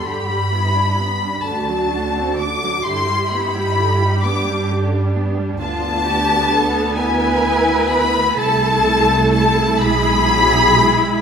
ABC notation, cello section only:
X:1
M:6/8
L:1/8
Q:3/8=43
K:G
V:1 name="Cello section"
G E D4 | E3 D3 | [K:Ephr] F G A B3 | A3 ^G3 |]